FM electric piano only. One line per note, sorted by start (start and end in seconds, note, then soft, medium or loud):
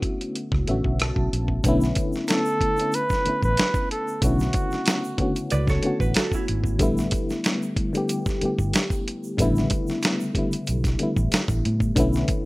0.00 0.73 D3 medium
0.00 0.68 A3 medium
0.00 0.69 B3 medium
0.00 0.70 C#4 medium
0.00 1.66 E4 medium
0.00 0.71 F#4 loud
0.66 0.74 C#3 medium
0.66 1.51 A3 medium
0.66 1.52 B3 medium
0.66 1.53 C#4 medium
0.66 0.98 E5 medium
0.71 1.54 D3 medium
0.71 1.53 F#4 medium
1.01 1.61 A5 medium
1.64 2.61 D3 loud
1.64 2.62 A3 medium
1.64 2.62 B3 loud
1.64 2.63 C#4 medium
1.68 2.63 E4 loud
2.77 3.18 D3 medium
2.77 3.19 A3 medium
2.77 3.20 B3 medium
2.77 3.20 C#4 medium
2.82 3.21 E4 medium
3.25 4.09 D3 medium
3.25 4.10 A3 medium
3.25 4.10 B3 medium
3.25 4.11 C#4 soft
3.29 4.11 E4 medium
4.21 4.29 C#3 medium
4.21 5.06 A3 medium
4.21 5.07 B3 medium
4.21 5.07 C#4 medium
4.26 5.09 D3 medium
4.26 5.08 E4 medium
5.17 5.74 D3 medium
5.17 5.75 A3 medium
5.17 5.75 B3 medium
5.17 5.76 C#4 medium
5.22 5.76 F#4 medium
5.82 6.67 D3 medium
5.82 6.67 A3 medium
5.82 6.68 B3 medium
5.82 6.68 C#4 medium
5.86 6.69 F#4 medium
6.79 7.76 D3 medium
6.79 7.77 G3 medium
6.79 7.77 A3 medium
6.79 7.78 B3 medium
6.83 7.79 E4 loud
7.93 8.35 D3 medium
7.93 8.35 G3 medium
7.93 8.36 A3 medium
7.93 8.36 B3 medium
7.97 8.37 G4 medium
8.41 9.25 D3 medium
8.41 9.26 G3 medium
8.41 9.26 A3 medium
8.41 9.27 B3 medium
8.45 9.27 G4 medium
9.37 9.45 C#3 medium
9.37 10.22 G3 loud
9.37 10.23 A3 medium
9.37 10.23 B3 medium
9.42 10.25 D3 loud
9.42 10.24 E4 loud
10.34 10.90 D3 medium
10.34 10.91 G3 medium
10.34 10.92 A3 medium
10.34 10.92 B3 medium
10.39 10.93 E4 medium
10.99 11.83 D3 medium
10.99 11.84 G3 medium
10.99 11.84 A3 medium
10.99 11.85 B3 medium
11.03 11.85 E4 medium
11.95 12.45 D3 loud
11.95 12.45 A3 medium
11.95 12.45 B3 medium
11.95 12.45 C#4 medium
12.00 12.45 E4 loud